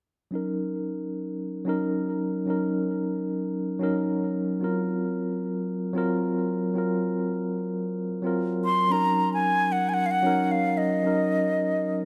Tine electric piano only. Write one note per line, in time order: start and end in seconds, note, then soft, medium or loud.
0.31 1.63 F#3 medium
0.31 1.64 C#4 medium
0.31 1.65 D#4 medium
0.35 1.65 A#4 medium
1.65 2.43 F#3 medium
1.65 2.44 C#4 medium
1.65 2.45 D#4 medium
1.69 2.46 A#4 medium
2.46 3.78 F#3 medium
2.46 3.78 C#4 medium
2.46 3.79 D#4 medium
2.50 3.80 A#4 medium
3.79 4.58 F#3 medium
3.79 4.59 C#4 medium
3.79 4.59 D#4 medium
3.83 4.60 A#4 medium
4.60 5.92 F#3 medium
4.60 5.93 C4 medium
4.60 5.93 F4 medium
4.64 5.94 A#4 medium
5.93 6.72 F#3 medium
5.93 6.73 C4 medium
5.93 6.74 F4 medium
5.98 6.74 A#4 medium
6.74 8.06 F#3 medium
6.74 8.07 C4 medium
6.74 8.07 F4 medium
6.78 8.08 A#4 medium
8.22 8.87 F#3 medium
8.22 8.87 C4 medium
8.22 8.88 F4 medium
8.27 8.89 A#4 medium
8.88 10.21 F#3 medium
8.88 10.21 C#4 medium
8.88 10.22 D#4 medium
8.93 10.23 A#4 medium
10.22 11.01 F#3 medium
10.22 11.02 C#4 medium
10.22 11.02 D#4 medium
10.27 11.03 A#4 loud
11.03 12.05 F#3 medium
11.03 12.05 C#4 medium
11.03 12.05 D#4 medium
11.07 12.05 A#4 medium